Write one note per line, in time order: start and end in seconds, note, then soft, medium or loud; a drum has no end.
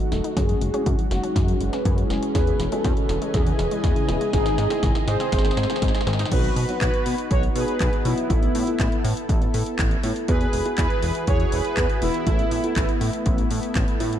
0.00 0.35 A3 medium
0.00 0.33 D#4 medium
0.00 0.35 D#4 medium
0.00 0.33 F#4 medium
0.00 2.31 F#4 medium
0.12 0.21 D#1 medium
0.12 0.18 A3 medium
0.12 0.34 A3 medium
0.12 0.34 D#4 medium
0.12 0.34 F#4 medium
0.12 0.34 A4 medium
0.12 snare medium
0.12 closed hi-hat soft
0.24 0.35 D#4 loud
0.24 closed hi-hat soft
0.37 0.55 F#2 loud
0.37 0.43 C#3 medium
0.37 0.71 G#3 medium
0.37 2.33 G#3 medium
0.37 0.71 C#4 medium
0.37 4.30 C#4 medium
0.37 0.68 C#4 medium
0.37 0.71 F#4 medium
0.37 0.71 G#4 medium
0.37 0.67 G#4 loud
0.37 kick loud
0.37 snare medium
0.37 closed hi-hat loud
0.49 0.59 F#3 medium
0.49 closed hi-hat soft
0.61 0.71 F#1 medium
0.61 0.68 G#3 medium
0.61 closed hi-hat medium
0.70 1.01 E4 medium
0.70 1.00 G#4 medium
0.70 0.90 G#4 loud
0.74 0.90 G#3 medium
0.74 0.90 C#4 medium
0.74 0.84 C#4 loud
0.74 0.90 F#4 medium
0.74 closed hi-hat soft
0.86 0.95 F#2 loud
0.86 0.92 C#3 medium
0.86 kick loud
0.86 closed hi-hat medium
0.99 1.09 F#3 medium
0.99 closed hi-hat soft
1.11 1.20 F#1 medium
1.11 1.17 G#3 medium
1.11 1.58 D#4 medium
1.11 1.57 F#4 loud
1.11 snare medium
1.11 closed hi-hat medium
1.23 1.34 C#4 loud
1.23 closed hi-hat soft
1.36 1.54 F#2 loud
1.36 1.42 C#3 medium
1.36 kick loud
1.36 snare medium
1.36 closed hi-hat loud
1.48 1.59 F#3 medium
1.48 closed hi-hat soft
1.61 1.70 F#1 medium
1.61 1.67 G#3 medium
1.61 closed hi-hat medium
1.69 2.00 G#4 medium
1.69 2.03 B4 loud
1.73 1.83 C#4 loud
1.73 snare medium
1.73 closed hi-hat soft
1.85 2.04 F#2 loud
1.85 1.92 C#3 medium
1.85 kick loud
1.85 closed hi-hat medium
1.98 2.08 F#3 medium
1.98 closed hi-hat soft
2.02 2.33 E4 medium
2.02 2.35 G#4 medium
2.10 2.19 F#1 medium
2.10 2.32 G#3 medium
2.10 2.16 G#3 medium
2.10 2.32 C#4 medium
2.10 2.32 F#4 medium
2.10 2.32 G#4 medium
2.10 snare medium
2.10 closed hi-hat soft
2.23 2.33 C#4 loud
2.23 closed hi-hat soft
2.35 2.53 E2 loud
2.35 2.41 B2 medium
2.35 4.31 E3 medium
2.35 2.69 B3 medium
2.35 2.69 C#4 medium
2.35 2.69 E4 medium
2.35 2.69 G#4 medium
2.35 2.66 G#4 medium
2.35 2.69 B4 loud
2.35 4.31 B4 medium
2.35 6.28 D#5 medium
2.35 6.28 G#5 medium
2.35 kick loud
2.35 snare medium
2.35 closed hi-hat medium
2.47 2.58 C#3 medium
2.47 closed hi-hat soft
2.60 2.69 E1 medium
2.60 2.66 E3 medium
2.60 snare medium
2.60 closed hi-hat medium
2.68 2.99 F#4 medium
2.68 3.00 A4 medium
2.68 closed hi-hat soft
2.72 2.83 G#3 loud
2.72 2.88 B3 medium
2.72 2.88 C#4 medium
2.72 2.88 E4 medium
2.72 2.88 G#4 medium
2.84 2.94 E2 loud
2.84 2.91 B2 medium
2.84 kick loud
2.84 snare medium
2.84 closed hi-hat medium
2.97 3.07 C#3 medium
2.97 closed hi-hat soft
3.01 3.32 F#4 medium
3.01 3.35 A4 loud
3.09 3.18 E1 medium
3.09 3.16 E3 medium
3.09 snare medium
3.09 closed hi-hat medium
3.22 3.32 G#3 loud
3.22 closed hi-hat soft
3.34 3.53 E2 loud
3.34 3.40 B2 medium
3.34 4.30 E4 medium
3.34 4.32 G#4 loud
3.34 kick loud
3.34 snare medium
3.34 closed hi-hat medium
3.47 3.57 C#3 medium
3.47 closed hi-hat soft
3.59 3.68 E1 loud
3.59 3.65 E3 medium
3.59 snare medium
3.59 closed hi-hat medium
3.71 3.82 G#3 loud
3.71 closed hi-hat soft
3.84 3.93 E2 loud
3.84 3.90 B2 medium
3.84 kick loud
3.84 snare medium
3.84 closed hi-hat medium
3.96 4.07 C#3 medium
3.96 closed hi-hat soft
4.08 4.18 E1 medium
4.08 4.15 E3 medium
4.08 4.30 B3 medium
4.08 4.30 C#4 medium
4.08 4.30 E4 medium
4.08 4.30 G#4 medium
4.08 snare medium
4.08 closed hi-hat soft
4.21 4.31 G#3 loud
4.21 closed hi-hat soft
4.33 4.52 G#1 medium
4.33 4.40 C3 medium
4.33 4.68 G#3 medium
4.33 4.68 C4 medium
4.33 6.30 C4 medium
4.33 4.68 D#4 medium
4.33 4.65 D#4 medium
4.33 4.68 G#4 loud
4.33 4.65 G#4 loud
4.33 kick loud
4.33 snare loud
4.33 closed hi-hat medium
4.46 4.56 D#3 medium
4.46 snare medium
4.46 closed hi-hat soft
4.58 4.67 G#2 medium
4.58 4.64 G#3 medium
4.58 snare medium
4.58 closed hi-hat medium
4.66 4.97 E4 medium
4.66 4.97 G#4 loud
4.70 4.87 G#3 medium
4.70 4.87 C4 medium
4.70 4.81 C4 loud
4.70 4.87 D#4 medium
4.70 4.87 G#4 loud
4.70 snare medium
4.70 closed hi-hat soft
4.83 4.92 G#1 loud
4.83 4.89 C3 medium
4.83 kick loud
4.83 snare medium
4.83 closed hi-hat medium
4.95 5.06 D#3 medium
4.95 snare medium
4.95 closed hi-hat soft
5.08 5.17 G#2 medium
5.08 5.14 G#3 medium
5.08 6.03 G#4 medium
5.08 6.03 C5 loud
5.08 snare loud
5.08 closed hi-hat medium
5.20 5.31 C4 loud
5.20 snare medium
5.20 closed hi-hat soft
5.32 5.51 G#1 loud
5.32 5.39 C3 medium
5.32 kick loud
5.32 snare loud
5.32 closed hi-hat medium
5.38 snare medium
5.45 5.55 D#3 medium
5.45 snare medium
5.45 closed hi-hat soft
5.51 snare medium
5.57 5.66 G#2 medium
5.57 5.68 C4 medium
5.57 snare loud
5.57 closed hi-hat medium
5.63 snare medium
5.70 6.29 G#3 medium
5.70 6.29 C4 medium
5.70 6.29 D#4 medium
5.70 5.76 D#4 medium
5.70 6.29 G#4 medium
5.70 snare medium
5.70 closed hi-hat soft
5.76 snare medium
5.82 5.91 G#1 medium
5.82 5.94 G#3 medium
5.82 kick loud
5.82 snare loud
5.82 closed hi-hat medium
5.88 snare medium
5.95 6.01 G#4 medium
5.95 snare medium
5.95 closed hi-hat soft
6.01 snare medium
6.07 6.25 G#2 medium
6.07 6.19 D#3 loud
6.07 snare loud
6.07 closed hi-hat soft
6.13 snare medium
6.19 6.31 D#4 loud
6.19 snare loud
6.19 closed hi-hat soft
6.25 snare medium
6.32 6.50 B1 loud
6.32 6.66 F#3 medium
6.32 6.66 B3 medium
6.32 10.24 B3 medium
6.32 6.66 D#4 medium
6.32 8.28 D#4 medium
6.32 8.28 F#4 medium
6.32 6.66 F#4 loud
6.32 6.78 F#4 medium
6.32 6.80 B4 loud
6.32 kick loud
6.32 closed hi-hat loud
6.32 crash loud
6.44 closed hi-hat soft
6.56 6.66 B2 medium
6.56 open hi-hat loud
6.69 6.85 F#3 medium
6.69 6.85 B3 medium
6.69 6.85 D#4 medium
6.69 6.85 F#4 medium
6.69 closed hi-hat soft
6.81 6.90 B1 loud
6.81 7.28 F#4 medium
6.81 7.32 B4 loud
6.81 kick loud
6.81 clap loud
6.81 closed hi-hat medium
6.94 closed hi-hat soft
7.06 7.15 B2 medium
7.06 open hi-hat medium
7.18 closed hi-hat soft
7.31 7.49 B1 loud
7.31 7.43 F#4 medium
7.31 7.42 C#5 loud
7.31 kick loud
7.31 closed hi-hat loud
7.43 closed hi-hat soft
7.56 7.65 B2 loud
7.56 8.02 G#4 medium
7.56 8.07 B4 loud
7.56 open hi-hat loud
7.68 closed hi-hat soft
7.80 7.90 B1 loud
7.80 kick loud
7.80 clap loud
7.80 closed hi-hat medium
7.93 closed hi-hat soft
8.05 8.14 B2 medium
8.05 8.27 F#3 medium
8.05 8.27 B3 medium
8.05 9.50 B3 medium
8.05 8.27 D#4 medium
8.05 9.50 E4 loud
8.05 8.27 F#4 medium
8.05 open hi-hat medium
8.18 closed hi-hat soft
8.30 8.48 A1 loud
8.30 8.64 A3 medium
8.30 8.64 B3 medium
8.30 8.64 E4 medium
8.30 10.27 E4 medium
8.30 8.64 A4 loud
8.30 10.27 A4 medium
8.30 kick loud
8.30 closed hi-hat loud
8.43 closed hi-hat soft
8.55 8.64 A2 medium
8.55 open hi-hat loud
8.67 8.83 A3 medium
8.67 8.83 B3 medium
8.67 8.83 E4 medium
8.67 8.83 A4 loud
8.67 closed hi-hat soft
8.80 8.89 A1 loud
8.80 kick loud
8.80 clap loud
8.80 closed hi-hat loud
8.92 closed hi-hat soft
9.04 9.14 A2 medium
9.04 open hi-hat loud
9.17 closed hi-hat soft
9.29 9.48 A1 loud
9.29 kick loud
9.29 closed hi-hat loud
9.42 closed hi-hat soft
9.54 9.63 A2 medium
9.54 open hi-hat loud
9.66 closed hi-hat soft
9.79 9.97 A1 medium
9.79 kick loud
9.79 clap loud
9.79 closed hi-hat loud
9.91 closed hi-hat soft
10.03 10.13 A2 medium
10.03 10.25 A3 medium
10.03 10.25 B3 medium
10.03 10.25 E4 medium
10.03 10.25 A4 medium
10.03 open hi-hat loud
10.16 closed hi-hat soft
10.28 10.47 E2 loud
10.28 12.25 E3 medium
10.28 10.63 B3 medium
10.28 10.63 E4 medium
10.28 12.25 E4 medium
10.28 10.63 F#4 medium
10.28 12.25 F#4 medium
10.28 10.63 G#4 loud
10.28 12.25 G#4 medium
10.28 10.75 G#4 medium
10.28 12.25 B4 medium
10.28 10.77 B4 loud
10.28 kick loud
10.28 closed hi-hat loud
10.41 closed hi-hat soft
10.53 10.62 E1 medium
10.53 open hi-hat loud
10.66 10.82 B3 medium
10.66 10.82 E4 medium
10.66 10.82 F#4 medium
10.66 10.82 G#4 loud
10.66 closed hi-hat soft
10.78 10.87 E2 loud
10.78 11.25 G#4 medium
10.78 11.29 B4 loud
10.78 kick loud
10.78 clap loud
10.78 closed hi-hat medium
10.90 closed hi-hat soft
11.03 11.12 E1 medium
11.03 open hi-hat medium
11.15 closed hi-hat soft
11.27 11.46 E2 loud
11.27 11.51 G#4 medium
11.27 11.53 C#5 loud
11.27 kick loud
11.27 closed hi-hat loud
11.40 closed hi-hat soft
11.52 11.62 E1 loud
11.52 11.99 G#4 medium
11.52 12.03 B4 loud
11.52 open hi-hat loud
11.65 closed hi-hat soft
11.77 11.86 E2 loud
11.77 kick loud
11.77 clap loud
11.77 closed hi-hat medium
11.89 closed hi-hat soft
12.02 12.11 E1 medium
12.02 12.24 B3 medium
12.02 13.47 B3 medium
12.02 13.47 E4 loud
12.02 12.24 E4 medium
12.02 12.24 F#4 medium
12.02 12.24 G#4 medium
12.02 open hi-hat medium
12.14 closed hi-hat soft
12.27 12.45 A1 loud
12.27 12.61 A3 medium
12.27 14.19 A3 medium
12.27 12.61 B3 medium
12.27 14.19 B3 medium
12.27 12.61 E4 medium
12.27 14.19 E4 medium
12.27 12.61 A4 loud
12.27 kick loud
12.27 closed hi-hat medium
12.39 closed hi-hat soft
12.51 12.61 A2 medium
12.51 open hi-hat loud
12.64 12.80 A3 medium
12.64 12.80 B3 medium
12.64 12.80 E4 medium
12.64 12.80 A4 medium
12.64 closed hi-hat soft
12.76 12.85 A1 loud
12.76 kick loud
12.76 clap loud
12.76 closed hi-hat medium
12.89 closed hi-hat soft
13.01 13.10 A2 medium
13.01 open hi-hat medium
13.13 closed hi-hat soft
13.26 13.44 A1 loud
13.26 kick loud
13.26 closed hi-hat medium
13.38 closed hi-hat soft
13.51 13.60 A2 medium
13.51 open hi-hat loud
13.63 closed hi-hat soft
13.75 13.85 A1 medium
13.75 kick loud
13.75 clap loud
13.75 closed hi-hat medium
13.88 closed hi-hat soft
14.00 14.19 A2 medium
14.00 14.19 A3 medium
14.00 14.19 B3 medium
14.00 14.19 E4 medium
14.00 14.19 A4 medium
14.00 open hi-hat medium
14.13 closed hi-hat soft